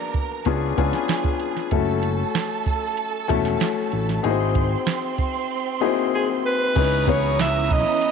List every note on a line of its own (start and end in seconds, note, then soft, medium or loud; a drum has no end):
0.00 0.24 A#3 medium
0.00 0.24 B3 medium
0.00 0.24 D4 medium
0.00 0.25 F#4 medium
0.00 0.25 G#4 medium
0.00 0.43 A#4 medium
0.00 0.15 D5 medium
0.00 0.43 A#5 medium
0.14 kick medium
0.14 closed hi-hat soft
0.45 0.71 C#2 medium
0.45 0.72 B3 medium
0.45 0.72 C#4 medium
0.45 0.72 D4 medium
0.45 0.72 F4 medium
0.45 1.70 G#4 medium
0.45 0.73 G#4 medium
0.45 1.69 G#5 medium
0.45 kick medium
0.45 closed hi-hat medium
0.77 0.90 C#2 medium
0.77 1.56 B3 medium
0.77 1.56 C#4 medium
0.77 1.56 D4 medium
0.77 1.56 F4 medium
0.77 1.56 G#4 medium
0.77 kick medium
0.77 closed hi-hat medium
0.93 snare soft
1.08 snare medium
1.08 closed hi-hat medium
1.24 kick medium
1.40 closed hi-hat medium
1.57 snare soft
1.71 2.22 F#1 loud
1.71 2.76 A3 medium
1.71 2.76 C#4 medium
1.71 2.76 E4 medium
1.71 2.77 F#4 medium
1.71 4.20 A4 medium
1.71 2.77 A4 medium
1.71 4.20 A5 medium
1.71 kick loud
1.71 closed hi-hat medium
2.03 closed hi-hat medium
2.35 snare medium
2.35 closed hi-hat medium
2.66 kick medium
2.66 closed hi-hat medium
2.97 closed hi-hat medium
3.28 3.55 E1 medium
3.28 4.07 A3 medium
3.28 4.07 C#4 medium
3.28 4.08 E4 medium
3.28 4.08 F#4 medium
3.28 4.08 A4 medium
3.28 kick medium
3.28 closed hi-hat medium
3.45 snare soft
3.60 snare loud
3.60 closed hi-hat medium
3.92 4.18 A1 medium
3.92 closed hi-hat medium
4.09 snare soft
4.23 4.74 G#1 loud
4.23 4.30 A#3 medium
4.23 6.72 C4 medium
4.23 5.28 D#4 medium
4.23 5.28 E4 medium
4.23 5.29 F#4 medium
4.23 5.29 G#4 medium
4.23 6.73 C6 medium
4.23 closed hi-hat medium
4.30 5.31 C4 medium
4.55 kick medium
4.55 closed hi-hat medium
4.87 snare medium
4.87 closed hi-hat medium
5.18 kick medium
5.18 closed hi-hat medium
5.80 5.88 A#3 medium
5.80 6.60 D#4 medium
5.80 6.60 E4 medium
5.80 6.60 F#4 medium
5.80 6.60 G#4 medium
5.87 6.63 C4 medium
6.15 6.29 G#4 medium
6.46 7.11 B4 loud
6.75 7.83 C#2 medium
6.75 8.12 E3 medium
6.75 8.12 B3 medium
6.75 7.02 C#4 medium
6.75 8.12 C#4 medium
6.75 7.02 D#4 medium
6.75 7.02 E4 medium
6.75 8.12 E4 medium
6.75 7.02 G#4 medium
6.75 7.03 B4 medium
6.75 8.12 A#5 medium
6.75 8.12 D#6 medium
6.75 kick loud
6.75 closed hi-hat medium
6.75 crash medium
7.07 8.12 B3 medium
7.07 8.12 C#4 medium
7.07 8.12 E4 medium
7.07 8.12 G#4 medium
7.07 8.12 B4 medium
7.07 7.40 C#5 medium
7.07 kick medium
7.07 closed hi-hat medium
7.23 closed hi-hat soft
7.39 7.74 E5 medium
7.39 snare loud
7.39 closed hi-hat medium
7.70 8.12 D#5 loud
7.70 kick medium
7.70 closed hi-hat medium
7.86 closed hi-hat medium
8.02 closed hi-hat medium